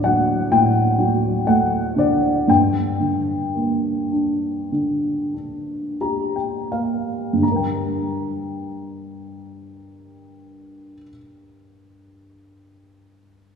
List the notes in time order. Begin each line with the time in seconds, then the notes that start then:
Already playing: D2 A2 D3 C5 D5
0.04 F#3 F#5
0.51 A2 G5
0.98 F#3
1.47 A3 F#5
1.96 D3 D5
2.48 G2 G5
3.00 D3
3.55 A#3
4.12 D4
4.72 D3
5.34 D4
6.01 G4 A#5
6.36 G5
6.72 A#3 F5
7.33 G2 D3
7.42 G3 A#5
7.47 D4
7.52 A#4
7.56 G5